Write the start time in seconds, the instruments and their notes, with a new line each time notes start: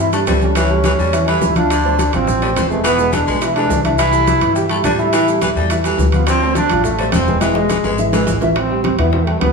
Already playing: upright bass G2
0.00 trombone E4
0.12 upright piano G3 G4 A4, baritone saxophone A3, trombone D4, high bongo, high conga, high timbale, maracas
0.27 upright bass C#2, baritone saxophone G3, trombone C4, high bongo, low bongo, high conga, high timbale, low timbale, maracas
0.41 upright piano G3 G4 A4, trombone C#4, high bongo, high conga, maracas
0.50 trombone D4
0.55 baritone saxophone E3, upright piano E3 E4 E5, trombone C#4, high bongo, high conga, high timbale, maracas
0.70 upright piano G3 G4 A4, high bongo, high conga
0.84 baritone saxophone E3, high bongo, high conga, high timbale, low timbale, maracas
0.98 upright bass E2, upright piano G3 G4 A4, baritone saxophone G3, maracas
1.12 upright piano E3 E4 E5, high bongo, high conga, high timbale, maracas
1.27 baritone saxophone E3, upright piano G3 G4 A4, trombone E4, high bongo, high conga, high timbale
1.41 upright bass D2, high bongo, low bongo, high conga, low timbale, maracas
1.56 upright piano F3 F4 F5, trombone D4, high bongo, high conga, high timbale, maracas
1.70 baritone saxophone D3, high bongo, high conga, high timbale, maracas
1.84 upright piano A3 A4 C5, high bongo, high conga
1.99 high bongo, high conga, high timbale, low timbale, maracas
2.13 upright bass A1, upright piano F3 F4 F5, trombone C4, high conga, low conga, high timbale, maracas
2.27 high bongo, high conga, low conga, maracas
2.42 baritone saxophone G3, upright piano A3 A4 C5, high bongo, high conga, high timbale
2.56 upright bass E1, baritone saxophone F3, high bongo, low bongo, high conga, high timbale, low timbale, maracas
2.70 upright piano G#3 G#4 B4, trombone A3, high bongo, maracas
2.84 baritone saxophone E3, upright piano E3 E4 E5, trombone B3, high bongo, high conga, high timbale, maracas
2.98 upright piano G#3 G#4 B4, high bongo, high conga, maracas
3.12 baritone saxophone E3, trombone D4, high bongo, high conga, high timbale, low timbale, maracas
3.27 upright bass B1, baritone saxophone G#3, upright piano G#3 G#4 B4, maracas
3.42 upright piano E3 E4 E5, trombone E4, high bongo, high conga, high timbale, maracas
3.55 baritone saxophone E3, upright piano G#3 G#4 B4, trombone D4, high bongo, high conga, high timbale
3.69 upright bass C2, high bongo, low bongo, high conga, low timbale, maracas
3.84 upright piano E3 E4 E5, trombone D4, high bongo, high conga, high timbale, maracas
3.98 baritone saxophone E3, trombone E4, high bongo, high conga, high timbale, maracas
4.13 upright piano G3 G4 A4, high bongo, high conga, maracas
4.27 high bongo, high conga, high timbale, low timbale, maracas
4.41 upright bass G2, upright piano E3 E4 E5, high conga, low conga, high timbale, maracas
4.55 trombone G4, high bongo, high conga, maracas
4.69 upright piano G3 G4 A4, baritone saxophone A3, trombone E4, high bongo, high conga, high timbale
4.84 upright bass A2, baritone saxophone G3, trombone D4, high bongo, low bongo, high conga, high timbale, low timbale, maracas
4.99 upright piano G3 G4 A4, trombone E4, high bongo, maracas
5.13 baritone saxophone E3, upright piano E3 E4 E5, high bongo, high conga, high timbale, maracas
5.27 upright piano G3 G4 A4, high bongo, high conga, maracas
5.42 baritone saxophone E3, high bongo, high conga, high timbale, low timbale, maracas
5.55 upright bass E2, baritone saxophone G3, upright piano G3 G4 A4, maracas
5.70 upright piano E3 E4 E5, high bongo, high conga, high timbale, maracas
5.84 baritone saxophone E3, upright piano G3 G4 A4, high bongo, high conga, high timbale, maracas
5.98 upright bass D2, high bongo, low bongo, high conga, low timbale, maracas
6.12 upright piano F3 F4 F5, trombone B3, high bongo, high conga, high timbale, maracas
6.27 baritone saxophone D3, trombone C4, high bongo, high conga, high timbale, maracas
6.41 upright piano A3 A4 C5, high bongo, high conga
6.55 trombone D4, high bongo, high conga, high timbale, low timbale, maracas
6.70 upright bass A1, upright piano F3 F4 F5, high conga, low conga, high timbale, maracas
6.84 trombone A3, high bongo, high conga, low conga, maracas
6.98 baritone saxophone G3, upright piano A3 A4 C5, high bongo, high conga, high timbale
7.12 upright bass E1, baritone saxophone F3, trombone C4, high bongo, low bongo, high conga, high timbale, low timbale, maracas
7.27 upright piano G#3 G#4 B4, high bongo, high conga, maracas
7.41 baritone saxophone E3, upright piano E3 E4 E5, trombone G#3, high bongo, high conga, high timbale, maracas
7.55 upright piano G#3 G#4 B4, high bongo, high conga
7.69 baritone saxophone E3, high bongo, high conga, high timbale, low timbale, maracas
7.84 upright bass G#1, baritone saxophone G#3, upright piano G#3 G#4 B4, high timbale, maracas
7.98 upright piano E3 E4 E5, low bongo, high conga, maracas
8.13 baritone saxophone E3, upright piano G#3 G#4 B4, low bongo, high conga, low timbale, maracas
8.27 upright bass A1, high conga, low timbale, maracas
8.41 upright piano E3 E4 E5, low bongo, high conga, low timbale, maracas
8.56 trombone C4, high bongo, high timbale
8.70 upright piano G3 G4 G5, high bongo, high conga
8.84 trombone C4, high bongo, high conga, high timbale, low timbale
8.98 upright bass E2, upright piano E3 E4 E5, trombone B3, high conga, low conga, high timbale
9.11 trombone C4, high bongo, high conga, low conga
9.25 upright piano G3 G4 G5, trombone A3, high bongo, high conga, high timbale
9.40 upright bass D2, trombone B3, high bongo, low bongo, high conga, high timbale, low timbale